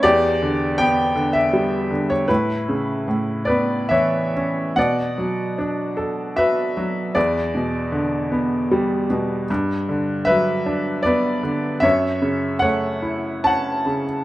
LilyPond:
<<
  \new Staff \with { instrumentName = "Upright piano" } { \time 3/4 \key b \minor \tempo 4 = 76 << { d''4 g''8. e''4 cis''16 | b'4. d''8 e''4 | fis''2 e''4 | d''2~ d''8 r8 |
r4 e''4 d''4 | e''4 fis''4 a''8. r16 | } \\ { g'4. r4. | e'4. b'8 cis''4 | d''2 b'4 | b'2~ b'8 r8 |
r4 b'4 b'4 | cis''4 cis''4 fis''8. r16 | } >> }
  \new Staff \with { instrumentName = "Upright piano" } { \clef bass \time 3/4 \key b \minor e,8 d8 b8 d8 g8 d8 | a,8 cis8 a,8 b8 e8 cis'8 | b,8 fis8 d'8 a'8 fis'8 fis8 | e,8 b,8 d8 b8 g8 b,8 |
g,8 d8 fis8 d'8 b8 d8 | fis,8 cis8 a8 e'8 cis'8 cis8 | }
>>